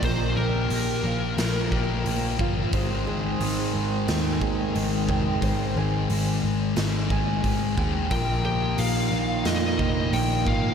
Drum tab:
HH |o-o-o-o-|o-o-o-o-|o-o-o-o-|o-o-o-o-|
SD |----o---|----o---|----o---|----o---|
BD |o----o-o|o----o-o|o----ooo|o----o-o|